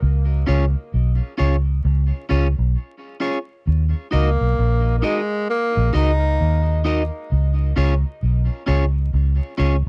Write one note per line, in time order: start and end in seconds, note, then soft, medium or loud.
0.02 0.45 C#2 medium
0.46 0.74 C#2 medium
0.46 0.64 C#4 medium
0.46 0.64 F4 medium
0.46 0.64 G#4 medium
0.46 0.65 C#5 medium
0.94 1.19 B1 medium
1.38 1.82 C#2 medium
1.38 1.55 C#4 medium
1.38 1.55 F4 medium
1.38 1.55 G#4 medium
1.38 1.56 C#5 medium
1.85 2.10 C#2 medium
2.29 2.56 C#2 medium
2.29 2.46 C#4 medium
2.29 2.46 F4 medium
2.29 2.47 G#4 medium
2.29 2.47 C#5 medium
2.58 2.75 B1 medium
3.20 3.37 C#4 medium
3.20 3.37 F4 medium
3.20 3.38 G#4 medium
3.20 3.38 C#5 medium
3.67 3.93 D#2 loud
4.11 4.38 C#2 medium
4.11 4.94 A#3 medium
4.11 4.28 D#4 medium
4.11 4.29 F#4 medium
4.11 4.29 A#4 medium
4.11 4.29 D#5 medium
4.41 4.57 B1 medium
4.59 5.01 A#1 medium
4.99 5.06 A#3 medium
4.99 5.19 D#4 medium
5.03 5.49 G#3 medium
5.03 5.20 F#4 medium
5.03 5.20 A#4 medium
5.03 5.20 D#5 medium
5.50 5.91 A#3 loud
5.77 5.93 A#1 medium
5.93 6.37 C#2 medium
5.93 6.10 D#4 medium
5.93 6.82 D#4 loud
5.93 6.10 F#4 medium
5.93 6.11 A#4 medium
5.93 6.11 D#5 medium
6.41 7.09 D#2 medium
6.85 7.02 D#4 medium
6.85 7.02 F#4 medium
6.85 7.02 A#4 medium
6.85 7.02 D#5 medium
7.32 7.74 C#2 medium
7.76 8.03 C#2 loud
7.76 7.93 C#4 medium
7.76 7.93 F4 medium
7.76 7.93 G#4 medium
7.76 7.94 C#5 medium
8.23 8.48 B1 medium
8.66 9.11 C#2 medium
8.66 8.84 C#4 medium
8.66 8.84 F4 medium
8.66 8.84 G#4 loud
8.66 8.84 C#5 medium
9.14 9.39 C#2 medium
9.58 9.85 C#2 medium
9.58 9.75 C#4 medium
9.58 9.75 F4 medium
9.58 9.75 G#4 medium
9.58 9.76 C#5 medium